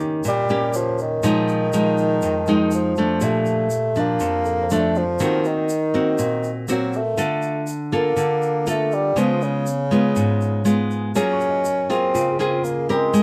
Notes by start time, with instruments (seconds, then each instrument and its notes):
Already playing: nylon-string guitar D#3 A#3 C#4 G4, tine electric piano D#5
0.24 nylon-string guitar A#2, shaker
0.28 bassoon G3
0.49 nylon-string guitar A#3 C#4 G4, shaker
0.73 bassoon F3, tine electric piano C#5, shaker
0.98 bassoon D#3, shaker
1.23 nylon-string guitar A#2 F3 G#3 D#4, shaker
1.48 shaker
1.73 nylon-string guitar F3 G#3 D#4, shaker
1.98 shaker
2.22 nylon-string guitar F2, shaker
2.46 nylon-string guitar F3 G#3 D#4, shaker
2.71 bassoon F3, shaker
2.96 nylon-string guitar F3 A3 D4, shaker
3.21 nylon-string guitar A#2, bassoon A3, tine electric piano G4, shaker
3.46 shaker
3.70 shaker
3.96 nylon-string guitar F3 D4, bassoon A#3, shaker
4.20 nylon-string guitar F2, shaker
4.45 tine electric piano A4, shaker
4.63 tine electric piano C5
4.70 nylon-string guitar F3 A3 D4, bassoon A3, shaker
4.80 tine electric piano D5
4.95 bassoon F3, shaker
5.19 nylon-string guitar D#3 A#3 C4 F#4, shaker
5.44 bassoon D#3, shaker
5.69 shaker
5.94 nylon-string guitar A#3 C4 F#4, shaker
6.18 nylon-string guitar A#2, shaker
6.44 shaker
6.68 bassoon F#3, nylon-string guitar A#3 C4 F#4, shaker
6.93 bassoon A3, shaker
7.17 nylon-string guitar D3 F4 A4, shaker
7.42 shaker
7.67 shaker
7.92 nylon-string guitar A#3 F4 A4, bassoon A#3, shaker
8.16 nylon-string guitar D3, shaker
8.42 shaker
8.67 bassoon A3, nylon-string guitar A#3 F4 A4, shaker
8.92 bassoon G3, shaker
9.16 nylon-string guitar C#3 G#3 B3 F4, bassoon F3, shaker
9.42 bassoon C#3, shaker
9.66 shaker
9.91 nylon-string guitar G#3 B3 F4, shaker
10.16 nylon-string guitar G#2, shaker
10.41 shaker
10.65 nylon-string guitar G#3 B3 F4, shaker
10.91 shaker
11.15 nylon-string guitar F#3 A#3 F4 G#4, bassoon C#4, tine electric piano A#4, shaker
11.33 tine electric piano C#6
11.40 shaker
11.50 tine electric piano D#5
11.65 shaker
11.89 nylon-string guitar A#3 F4 G#4, bassoon C4, shaker
12.14 nylon-string guitar C#3, tine electric piano F4, shaker
12.32 tine electric piano G#4
12.39 nylon-string guitar A#3 F4 G#4, bassoon C4, shaker
12.49 tine electric piano A#4
12.65 bassoon A#3, shaker
12.89 bassoon G#3, nylon-string guitar C4 G4 A#4, shaker
13.14 nylon-string guitar G#3, shaker